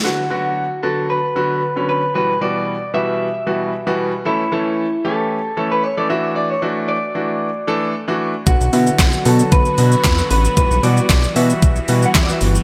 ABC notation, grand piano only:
X:1
M:4/4
L:1/16
Q:1/4=114
K:Edor
V:1 name="Grand piano"
[D,F,B,F] z [D,F,B,F]2 z2 [D,F,B,F]2 z2 [D,F,B,F]2 z [D,F,B,C]2 z | [B,,E,G,B,F] z [B,,E,G,B,F]2 z2 [B,,E,G,B,F]2 z2 [B,,E,G,B,F]2 z [B,,E,G,B,F]2 z | [E,A,CA] z [E,A,CA]2 z2 [E,A,CG]2 z2 [E,A,CA]2 z [E,A,CA] [E,A,DF]2- | [E,A,DF] z [E,A,DF]2 z2 [E,A,DF]2 z2 [E,A,DA]2 z [E,A,DF]2 z |
[D,F,B,F] z [D,F,B,E]2 z2 [D,F,B,F]2 z2 [D,F,B,F]2 z [D,F,B,F]2 z | [E,G,B,F] z [E,G,B,F]2 z2 [E,G,B,F]2 z2 [E,G,B,F]2 z [E,G,B,F]2 z |]